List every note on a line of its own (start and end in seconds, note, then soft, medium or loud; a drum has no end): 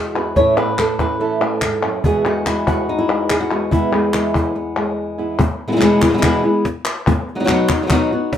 0.00 0.36 E2 medium
0.00 0.34 G#3 medium
0.00 0.34 F#4 soft
0.15 0.35 E3 soft
0.15 0.36 G#3 soft
0.15 0.36 B3 soft
0.15 0.35 F#4 soft
0.15 0.34 B4 soft
0.15 clap soft
0.36 0.56 A2 medium
0.36 2.04 A2 medium
0.36 0.57 E3 medium
0.36 0.57 A3 medium
0.36 0.57 C#4 medium
0.36 0.56 E4 medium
0.36 0.57 C#5 loud
0.36 cajon bass medium
0.36 cajon slap soft
0.57 1.41 A3 medium
0.57 0.77 A3 soft
0.57 0.78 C#4 soft
0.57 0.77 E4 soft
0.57 0.99 B4 medium
0.57 cajon slap soft
0.78 1.19 A4 medium
0.78 muted nylon-string guitar stroke medium
0.78 cajon slap medium
0.78 clap medium
0.99 1.20 A3 soft
0.99 1.20 C#4 soft
0.99 1.19 E4 soft
0.99 1.63 B4 medium
0.99 cajon bass medium
0.99 cajon slap soft
0.99 clap soft
1.20 1.40 A2 medium
1.20 1.41 E3 medium
1.20 1.41 A3 medium
1.20 1.40 C#4 medium
1.20 1.39 E4 medium
1.20 1.94 A4 medium
1.41 2.02 A3 medium
1.41 1.62 A3 soft
1.41 1.62 C#4 soft
1.41 1.61 E4 soft
1.62 1.83 G#2 medium
1.62 muted nylon-string guitar stroke soft
1.62 cajon slap loud
1.62 clap medium
1.83 2.04 F#2 medium
1.83 2.04 A3 soft
1.83 2.04 C#4 soft
1.83 2.03 E4 soft
1.83 clap soft
2.04 2.24 E2 medium
2.04 3.71 E2 medium
2.04 2.25 B2 medium
2.04 2.25 E3 medium
2.04 2.25 G#3 medium
2.04 2.25 B3 medium
2.04 2.24 F#4 medium
2.04 2.26 G#4 loud
2.04 cajon bass loud
2.25 2.45 E3 soft
2.25 3.08 G#3 medium
2.25 2.46 G#3 soft
2.25 2.46 B3 soft
2.25 2.45 F#4 soft
2.25 2.66 F#4 medium
2.25 cajon slap soft
2.46 2.66 E3 soft
2.46 2.67 G#3 soft
2.46 2.67 B3 soft
2.46 2.97 E4 medium
2.46 2.67 F#4 medium
2.46 cajon slap medium
2.46 clap medium
2.67 2.88 E3 soft
2.67 2.88 G#3 soft
2.67 2.88 B3 soft
2.67 3.30 F#4 medium
2.67 2.88 F#4 soft
2.67 cajon bass medium
2.67 clap soft
2.89 3.41 D#4 medium
2.89 muted nylon-string guitar stroke soft
2.99 3.70 E4 medium
3.08 3.51 G#3 medium
3.30 3.40 G#4 medium
3.30 cajon slap medium
3.30 clap medium
3.40 3.72 F#4 medium
3.51 3.71 E3 soft
3.51 3.92 G#3 soft
3.51 3.71 G#3 soft
3.51 3.71 B3 soft
3.51 3.71 F#4 soft
3.51 clap soft
3.71 5.38 E2 medium
3.71 3.92 E2 medium
3.71 3.92 B2 medium
3.71 3.92 E3 medium
3.71 3.92 G#3 medium
3.71 3.92 B3 medium
3.71 5.18 E4 medium
3.71 3.91 E4 medium
3.71 cajon bass medium
3.92 4.12 E3 soft
3.92 4.75 G#3 medium
3.92 4.12 G#3 soft
3.92 4.13 B3 soft
3.92 4.13 E4 soft
4.13 4.33 E3 soft
4.13 4.34 G#3 soft
4.13 4.55 B3 soft
4.13 4.34 B3 soft
4.13 4.33 E4 soft
4.13 cajon slap medium
4.13 clap medium
4.34 4.54 E3 soft
4.34 4.54 G#3 soft
4.34 4.55 B3 soft
4.34 4.54 E4 soft
4.34 cajon bass medium
4.55 5.67 B3 soft
4.55 muted nylon-string guitar stroke medium
4.77 5.37 G#3 medium
5.18 5.39 E3 soft
5.18 5.39 G#3 soft
5.18 5.39 B3 soft
5.18 5.38 E4 soft
5.18 5.67 E4 soft
5.39 muted nylon-string guitar stroke medium
5.39 cajon bass loud
5.68 5.71 B2 medium
5.68 5.71 E3 medium
5.68 5.72 G#3 medium
5.68 5.71 B3 medium
5.68 5.72 E4 medium
5.72 5.75 B2 medium
5.72 5.75 E3 medium
5.72 5.76 G#3 medium
5.72 5.76 B3 medium
5.72 5.76 E4 medium
5.76 5.80 B2 medium
5.76 5.80 E3 medium
5.76 5.80 G#3 medium
5.76 5.81 B3 medium
5.76 5.81 E4 medium
5.81 6.01 E2 medium
5.81 6.01 B2 medium
5.81 6.01 E3 medium
5.81 6.01 G#3 loud
5.81 6.02 B3 medium
5.81 6.01 E4 loud
5.81 cajon slap loud
5.81 clap medium
6.02 6.08 E3 soft
6.02 6.09 G#3 soft
6.02 6.09 B3 soft
6.02 6.09 E4 soft
6.02 cajon bass medium
6.02 clap medium
6.09 6.12 B2 medium
6.09 6.12 E3 medium
6.09 6.13 G#3 medium
6.09 6.13 B3 medium
6.09 6.13 E4 medium
6.13 6.16 B2 medium
6.13 6.17 E3 medium
6.13 6.17 G#3 medium
6.13 6.18 B3 medium
6.13 6.18 E4 medium
6.18 6.21 B2 medium
6.18 6.22 E3 medium
6.18 6.22 G#3 medium
6.18 6.22 B3 medium
6.18 6.22 E4 medium
6.22 6.43 E2 medium
6.22 6.43 B2 medium
6.22 6.43 E3 medium
6.22 6.43 G#3 medium
6.22 6.43 B3 medium
6.22 6.42 E4 medium
6.22 cajon bass medium
6.22 clap medium
6.44 6.65 E3 soft
6.44 6.65 G#3 medium
6.44 6.64 B3 medium
6.44 6.64 E4 medium
6.65 muted nylon-string guitar stroke medium
6.65 cajon slap loud
6.85 cajon slap soft
6.85 clap medium
7.07 muted nylon-string guitar stroke medium
7.07 cajon bass loud
7.28 cajon slap soft
7.35 7.39 F#3 medium
7.35 7.39 B3 medium
7.35 7.39 D#4 medium
7.35 7.39 F#4 medium
7.40 7.43 F#3 medium
7.40 7.44 B3 medium
7.40 7.44 D#4 medium
7.40 7.44 F#4 medium
7.44 7.48 F#3 medium
7.44 7.48 B3 medium
7.44 7.48 D#4 medium
7.44 7.49 F#4 medium
7.44 clap medium
7.48 7.69 B2 medium
7.48 7.69 F#3 medium
7.48 7.69 B3 medium
7.48 7.69 D#4 medium
7.48 7.69 F#4 loud
7.48 cajon slap loud
7.69 7.81 B3 soft
7.69 7.82 D#4 soft
7.69 7.82 F#4 medium
7.69 cajon bass medium
7.69 clap medium
7.82 7.85 F#3 medium
7.82 7.86 B3 medium
7.82 7.86 D#4 medium
7.82 7.87 F#4 medium
7.87 7.91 F#3 medium
7.87 7.91 B3 medium
7.87 7.91 D#4 medium
7.87 7.91 F#4 medium
7.87 cajon bass loud
7.87 clap medium
7.91 8.11 B2 medium
7.91 8.11 F#3 medium
7.91 8.11 B3 medium
7.91 8.11 D#4 medium
7.91 8.11 F#4 medium
8.12 8.32 B3 medium
8.12 8.32 D#4 medium
8.12 8.32 F#4 medium
8.33 muted nylon-string guitar stroke medium
8.33 cajon slap loud